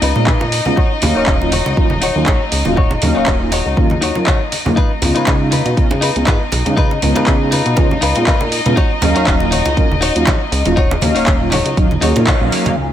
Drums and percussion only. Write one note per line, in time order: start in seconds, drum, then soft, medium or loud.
0.02 open hi-hat loud
0.16 muted conga soft
0.27 kick loud
0.27 clap loud
0.27 high conga medium
0.41 muted conga medium
0.52 open hi-hat loud
0.66 high conga medium
0.77 kick loud
0.77 muted conga soft
1.02 open hi-hat loud
1.02 muted conga medium
1.02 high conga medium
1.02 low conga medium
1.26 kick loud
1.26 clap loud
1.42 muted conga medium
1.52 open hi-hat loud
1.52 high conga medium
1.66 muted conga medium
1.77 kick loud
1.90 high conga medium
2.02 open hi-hat loud
2.02 muted conga medium
2.26 kick loud
2.26 clap loud
2.26 muted conga medium
2.26 high conga medium
2.52 open hi-hat loud
2.65 muted conga medium
2.65 high conga medium
2.77 kick loud
2.91 muted conga medium
3.02 open hi-hat loud
3.02 high conga medium
3.02 low conga medium
3.26 kick loud
3.26 clap loud
3.26 muted conga soft
3.52 open hi-hat loud
3.52 muted conga medium
3.52 high conga medium
3.77 kick loud
3.90 muted conga soft
3.90 high conga medium
4.02 open hi-hat loud
4.15 muted conga medium
4.27 kick loud
4.27 clap loud
4.27 high conga medium
4.52 open hi-hat loud
4.52 muted conga soft
4.66 high conga medium
4.66 low conga medium
4.77 kick loud
4.77 closed hi-hat soft
5.02 open hi-hat loud
5.02 muted conga soft
5.02 high conga medium
5.02 low conga medium
5.16 closed hi-hat medium
5.27 kick loud
5.27 clap loud
5.27 closed hi-hat medium
5.27 muted conga medium
5.52 open hi-hat loud
5.52 high conga medium
5.66 closed hi-hat medium
5.66 muted conga soft
5.77 kick loud
5.77 closed hi-hat soft
5.91 muted conga medium
5.91 high conga medium
6.02 open hi-hat loud
6.16 closed hi-hat medium
6.27 kick loud
6.27 clap loud
6.27 closed hi-hat soft
6.27 muted conga soft
6.27 high conga medium
6.52 open hi-hat loud
6.52 muted conga medium
6.66 closed hi-hat medium
6.66 high conga medium
6.77 kick loud
6.77 closed hi-hat soft
6.91 muted conga medium
7.02 open hi-hat loud
7.02 high conga medium
7.02 low conga medium
7.16 closed hi-hat medium
7.16 muted conga medium
7.27 kick loud
7.27 clap loud
7.27 closed hi-hat medium
7.52 open hi-hat loud
7.52 muted conga soft
7.52 high conga medium
7.66 closed hi-hat medium
7.77 kick loud
7.77 closed hi-hat soft
7.77 muted conga medium
7.91 high conga medium
8.02 open hi-hat loud
8.15 closed hi-hat medium
8.15 muted conga soft
8.27 kick loud
8.27 clap loud
8.27 closed hi-hat medium
8.27 high conga medium
8.41 muted conga medium
8.52 open hi-hat loud
8.66 closed hi-hat medium
8.66 high conga medium
8.77 kick loud
8.77 closed hi-hat soft
8.77 muted conga medium
9.02 open hi-hat medium
9.02 muted conga medium
9.02 high conga medium
9.02 low conga medium
9.16 closed hi-hat medium
9.27 kick loud
9.27 clap loud
9.27 closed hi-hat medium
9.40 muted conga medium
9.52 open hi-hat loud
9.52 high conga medium
9.66 closed hi-hat medium
9.66 muted conga medium
9.77 kick loud
9.77 closed hi-hat medium
9.91 high conga medium
10.02 open hi-hat loud
10.02 muted conga soft
10.16 closed hi-hat medium
10.27 kick loud
10.27 clap loud
10.27 closed hi-hat medium
10.27 muted conga medium
10.27 high conga medium
10.52 open hi-hat medium
10.65 closed hi-hat medium
10.65 muted conga medium
10.65 high conga medium
10.77 kick loud
10.77 closed hi-hat medium
10.91 muted conga medium
11.01 open hi-hat loud
11.01 high conga medium
11.01 low conga medium
11.16 open hi-hat medium
11.26 kick loud
11.26 clap loud
11.26 closed hi-hat medium
11.26 muted conga medium
11.51 clap soft
11.51 open hi-hat loud
11.51 muted conga medium
11.51 high conga medium
11.66 closed hi-hat medium
11.77 kick loud
11.77 closed hi-hat medium
11.91 muted conga soft
11.91 high conga medium
12.02 open hi-hat loud
12.16 closed hi-hat medium
12.16 muted conga medium
12.27 kick loud
12.27 clap loud
12.27 closed hi-hat medium
12.27 high conga medium
12.52 open hi-hat medium
12.52 muted conga medium
12.66 closed hi-hat medium
12.66 high conga medium
12.66 low conga medium
12.77 closed hi-hat soft